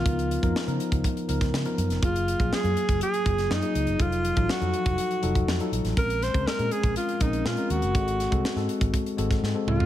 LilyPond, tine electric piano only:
\new Staff \with { instrumentName = "Tine electric piano" } { \time 4/4 \key des \major \tempo 4 = 122 <f ces' ees' bes'>8 r16 <f ces' ees' bes'>16 r16 <f ces' ees' bes'>8. r8 <f ces' ees' bes'>8 r16 <f ces' ees' bes'>8 r16 | <ges bes f' aes'>8 r16 <ges bes f' aes'>16 r16 <ges bes f' aes'>8. r8 <ges bes f' aes'>8 r16 <ges bes f' aes'>8 r16 | <ges ees' f' a'>8 r16 <ges ees' f' a'>16 r16 <f ges ees' a'>8. r8 <ges ees' f' a'>8 r16 <ges ees' f' a'>8 r16 | <aes c' des' bes'>8 r16 <aes c' des' bes'>16 r16 <aes c' des' bes'>8. r8 <aes c' des' bes'>8 r16 <aes c' des' bes'>8 r16 |
<aes c' ges' a'>8 r16 <aes c' ges' a'>16 r16 <aes c' ges' a'>8. r8 <aes c' ges' a'>8 r16 <aes c' ges' a'>8 r16 | }